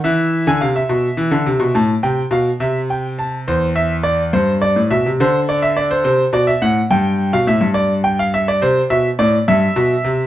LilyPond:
<<
  \new Staff \with { instrumentName = "Grand piano" } { \time 12/8 \key a \phrygian \tempo 4. = 70 e''8. gis''16 f''16 e''4.~ e''16 a''8 g''8 f''8 e''8 g''8 a''8 | \key c \major c''8 e''8 d''8 c''8 d''8 e''8 c''8 d''16 e''16 d''16 c''16 c''8 d''16 e''16 fis''8 | g''8. f''16 e''8 d''8 g''16 f''16 e''16 d''16 c''8 e''8 d''8 e''4. | }
  \new Staff \with { instrumentName = "Grand piano" } { \clef bass \time 12/8 \key a \phrygian e8. d16 c8 b,8 e16 d16 c16 b,16 a,8 c8 b,8 c4. | \key c \major e,4. g,8. a,16 b,16 c16 d4. c8 b,8 a,8 | g,8. b,16 a,16 g,4.~ g,16 c8 b,8 a,8 g,8 b,8 c8 | }
>>